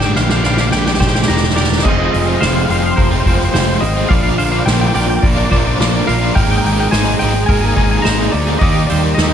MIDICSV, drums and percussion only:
0, 0, Header, 1, 2, 480
1, 0, Start_track
1, 0, Tempo, 563910
1, 1576, Time_signature, 4, 2, 24, 8
1, 7947, End_track
2, 0, Start_track
2, 0, Title_t, "Drums"
2, 7, Note_on_c, 9, 38, 99
2, 92, Note_off_c, 9, 38, 0
2, 132, Note_on_c, 9, 38, 103
2, 217, Note_off_c, 9, 38, 0
2, 249, Note_on_c, 9, 38, 110
2, 334, Note_off_c, 9, 38, 0
2, 371, Note_on_c, 9, 38, 102
2, 456, Note_off_c, 9, 38, 0
2, 486, Note_on_c, 9, 38, 115
2, 571, Note_off_c, 9, 38, 0
2, 608, Note_on_c, 9, 38, 111
2, 693, Note_off_c, 9, 38, 0
2, 733, Note_on_c, 9, 38, 110
2, 799, Note_off_c, 9, 38, 0
2, 799, Note_on_c, 9, 38, 103
2, 857, Note_on_c, 9, 36, 83
2, 858, Note_off_c, 9, 38, 0
2, 858, Note_on_c, 9, 38, 110
2, 914, Note_off_c, 9, 38, 0
2, 914, Note_on_c, 9, 38, 110
2, 942, Note_off_c, 9, 36, 0
2, 978, Note_off_c, 9, 38, 0
2, 978, Note_on_c, 9, 38, 111
2, 1040, Note_off_c, 9, 38, 0
2, 1040, Note_on_c, 9, 38, 119
2, 1093, Note_off_c, 9, 38, 0
2, 1093, Note_on_c, 9, 38, 123
2, 1163, Note_off_c, 9, 38, 0
2, 1163, Note_on_c, 9, 38, 115
2, 1219, Note_off_c, 9, 38, 0
2, 1219, Note_on_c, 9, 38, 114
2, 1275, Note_off_c, 9, 38, 0
2, 1275, Note_on_c, 9, 38, 108
2, 1333, Note_off_c, 9, 38, 0
2, 1333, Note_on_c, 9, 38, 121
2, 1395, Note_off_c, 9, 38, 0
2, 1395, Note_on_c, 9, 38, 119
2, 1465, Note_off_c, 9, 38, 0
2, 1465, Note_on_c, 9, 38, 107
2, 1522, Note_off_c, 9, 38, 0
2, 1522, Note_on_c, 9, 38, 117
2, 1579, Note_on_c, 9, 36, 103
2, 1582, Note_on_c, 9, 49, 112
2, 1607, Note_off_c, 9, 38, 0
2, 1664, Note_off_c, 9, 36, 0
2, 1667, Note_off_c, 9, 49, 0
2, 1822, Note_on_c, 9, 46, 65
2, 1907, Note_off_c, 9, 46, 0
2, 2058, Note_on_c, 9, 38, 121
2, 2058, Note_on_c, 9, 46, 94
2, 2143, Note_off_c, 9, 38, 0
2, 2143, Note_off_c, 9, 46, 0
2, 2298, Note_on_c, 9, 46, 65
2, 2384, Note_off_c, 9, 46, 0
2, 2538, Note_on_c, 9, 36, 107
2, 2541, Note_on_c, 9, 46, 89
2, 2623, Note_off_c, 9, 36, 0
2, 2626, Note_off_c, 9, 46, 0
2, 2777, Note_on_c, 9, 36, 93
2, 2780, Note_on_c, 9, 46, 66
2, 2862, Note_off_c, 9, 36, 0
2, 2865, Note_off_c, 9, 46, 0
2, 2904, Note_on_c, 9, 38, 35
2, 2989, Note_off_c, 9, 38, 0
2, 3020, Note_on_c, 9, 38, 123
2, 3020, Note_on_c, 9, 46, 91
2, 3105, Note_off_c, 9, 38, 0
2, 3105, Note_off_c, 9, 46, 0
2, 3263, Note_on_c, 9, 46, 66
2, 3348, Note_off_c, 9, 46, 0
2, 3496, Note_on_c, 9, 36, 107
2, 3500, Note_on_c, 9, 46, 77
2, 3581, Note_off_c, 9, 36, 0
2, 3585, Note_off_c, 9, 46, 0
2, 3739, Note_on_c, 9, 46, 63
2, 3824, Note_off_c, 9, 46, 0
2, 3977, Note_on_c, 9, 38, 119
2, 3977, Note_on_c, 9, 46, 92
2, 4062, Note_off_c, 9, 38, 0
2, 4062, Note_off_c, 9, 46, 0
2, 4214, Note_on_c, 9, 46, 64
2, 4299, Note_off_c, 9, 46, 0
2, 4455, Note_on_c, 9, 36, 121
2, 4456, Note_on_c, 9, 46, 90
2, 4540, Note_off_c, 9, 36, 0
2, 4541, Note_off_c, 9, 46, 0
2, 4696, Note_on_c, 9, 36, 86
2, 4703, Note_on_c, 9, 46, 74
2, 4781, Note_off_c, 9, 36, 0
2, 4789, Note_off_c, 9, 46, 0
2, 4941, Note_on_c, 9, 38, 125
2, 4941, Note_on_c, 9, 46, 100
2, 5027, Note_off_c, 9, 38, 0
2, 5027, Note_off_c, 9, 46, 0
2, 5182, Note_on_c, 9, 46, 72
2, 5267, Note_off_c, 9, 46, 0
2, 5416, Note_on_c, 9, 36, 111
2, 5422, Note_on_c, 9, 46, 95
2, 5501, Note_off_c, 9, 36, 0
2, 5507, Note_off_c, 9, 46, 0
2, 5658, Note_on_c, 9, 38, 36
2, 5658, Note_on_c, 9, 46, 72
2, 5743, Note_off_c, 9, 38, 0
2, 5743, Note_off_c, 9, 46, 0
2, 5894, Note_on_c, 9, 38, 119
2, 5894, Note_on_c, 9, 46, 99
2, 5979, Note_off_c, 9, 38, 0
2, 5979, Note_off_c, 9, 46, 0
2, 6133, Note_on_c, 9, 46, 69
2, 6218, Note_off_c, 9, 46, 0
2, 6372, Note_on_c, 9, 46, 91
2, 6374, Note_on_c, 9, 36, 117
2, 6457, Note_off_c, 9, 46, 0
2, 6459, Note_off_c, 9, 36, 0
2, 6613, Note_on_c, 9, 46, 70
2, 6614, Note_on_c, 9, 36, 86
2, 6698, Note_off_c, 9, 46, 0
2, 6699, Note_off_c, 9, 36, 0
2, 6853, Note_on_c, 9, 38, 126
2, 6853, Note_on_c, 9, 46, 94
2, 6938, Note_off_c, 9, 38, 0
2, 6938, Note_off_c, 9, 46, 0
2, 7094, Note_on_c, 9, 46, 72
2, 7180, Note_off_c, 9, 46, 0
2, 7330, Note_on_c, 9, 46, 82
2, 7333, Note_on_c, 9, 36, 121
2, 7415, Note_off_c, 9, 46, 0
2, 7418, Note_off_c, 9, 36, 0
2, 7571, Note_on_c, 9, 46, 65
2, 7656, Note_off_c, 9, 46, 0
2, 7811, Note_on_c, 9, 38, 127
2, 7811, Note_on_c, 9, 46, 90
2, 7896, Note_off_c, 9, 38, 0
2, 7896, Note_off_c, 9, 46, 0
2, 7947, End_track
0, 0, End_of_file